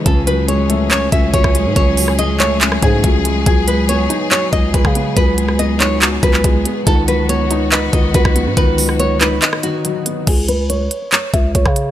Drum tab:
CC |----------------|----------------|----------------|----------------|
HH |x-x-x-x-x-x-x-x-|x-o-x-x-x-x-x-x-|x-x-x-x-x-x-x-x-|x-x-x-x-x-x-x-x-|
CP |--------x-------|------x-x-------|--------x-------|------x-x--x----|
SD |-------------r--|---r-----r------|-------------r--|---r------------|
BD |o---------o-oo--|o---------o-o---|o---------o-oo--|o---------o-o---|

CC |----------------|----------------|x---------------|
HH |x-x-x-x-x-x-x-x-|x-o-x-x-x-x-x-x-|x-x-x-x-x-x-x-x-|
CP |--------x-------|------x-x-------|--------x-------|
SD |-------------r--|---r-----r------|-------------r--|
BD |o---------o-oo--|o---------------|o---------o-oo--|